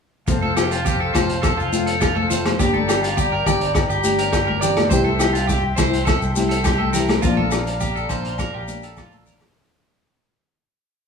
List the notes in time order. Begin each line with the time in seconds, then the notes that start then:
0.27 F1 F3 A3 C4 F4 C5 F5 A5, muted clean electric guitar stroke, kick, closed hi-hat, shekere
0.42 A4, high conga
0.56 A3 C4 F4 G4, cross-stick, closed hi-hat, low agogo, shekere
0.71 F4, closed hi-hat, shekere
0.85 G4, kick, closed hi-hat, shekere
1.00 A4
1.14 F1 C4 F4 C5, muted nylon-string guitar stroke, kick, cross-stick, closed hi-hat, high conga, low agogo, shekere
1.29 closed hi-hat
1.42 A4, kick, cross-stick, closed hi-hat, low agogo, shekere
1.57 F1 F4, shekere
1.72 A3 C4 F4, closed hi-hat, high conga, shekere
1.86 A4, closed hi-hat
2.00 F4, kick, cross-stick, closed hi-hat, low agogo, shekere
2.15 A4, high conga
2.30 A3 C4 F4 C5, closed hi-hat, low conga, shekere
2.46 cross-stick, closed hi-hat, high conga, low agogo
2.59 G1 A#3 D4 G4 D5 G5 A#5, kick, closed hi-hat, shekere
2.74 A4, high conga
2.88 D4 G4, cross-stick, closed hi-hat, low agogo, shekere
3.03 F4, closed hi-hat, shekere
3.17 G4, kick, closed hi-hat, shekere
3.32 A#4
3.46 G1 D4 G4 D5, kick, closed hi-hat, high conga, low conga, low agogo, shekere
3.61 closed hi-hat
3.75 muted clean electric guitar stroke, kick, cross-stick, closed hi-hat, low agogo, shekere
3.90 G1 G4, shekere
4.03 D4 G4, closed hi-hat, high conga, shekere
4.19 A#4, closed hi-hat
4.32 G4, kick, cross-stick, closed hi-hat, low agogo, shekere
4.47 A#4, high conga
4.61 D4 G4 D5, closed hi-hat, low conga, shekere
4.77 cross-stick, closed hi-hat, high conga, low agogo
4.90 C2 E3 C4 E4 G4 C5 E5 C6, kick, closed hi-hat, shekere
5.04 A4, high conga
5.19 C4 E4 G4, cross-stick, closed hi-hat, low agogo, shekere
5.33 F4, closed hi-hat, shekere
5.47 G4, kick, closed hi-hat, shekere
5.76 C2 C4 E4 C5, kick, cross-stick, closed hi-hat, high conga, low conga, low agogo, shekere
5.93 closed hi-hat
6.05 A4, kick, cross-stick, closed hi-hat, low agogo, shekere
6.22 C2, shekere
6.35 C4 E4 G4, closed hi-hat, high conga, shekere
6.49 A4, closed hi-hat
6.64 G4, kick, cross-stick, closed hi-hat, low agogo, shekere
6.78 A4, high conga
6.93 C4 E4 G4 A#4, closed hi-hat, low conga, shekere
7.08 cross-stick, closed hi-hat, high conga, low agogo
7.22 A#1 F3 A#3 D4 F4 D5 F5 A#5, kick, closed hi-hat, shekere
7.37 A4, high conga, low conga
7.51 A#3 D4, muted clean electric guitar stroke, cross-stick, closed hi-hat, low agogo, shekere
7.67 closed hi-hat, shekere
7.80 G4, kick, closed hi-hat, shekere
7.96 A4, shekere
8.09 A#1 A#3 D4 C5, kick, closed hi-hat, low agogo, shekere
8.25 closed hi-hat
8.38 A#4, kick, cross-stick, closed hi-hat, low agogo, shekere
8.54 A#1 G4
8.68 A#3 D4, closed hi-hat, high conga, shekere
8.83 A4, closed hi-hat, shekere
8.97 F4, kick, cross-stick, closed hi-hat, high conga, low agogo, shekere
9.12 A4, high conga, shekere
9.26 D4 A#4, muted nylon-string guitar stroke, closed hi-hat, low conga, shekere
9.40 cross-stick, closed hi-hat, low conga, low agogo, shekere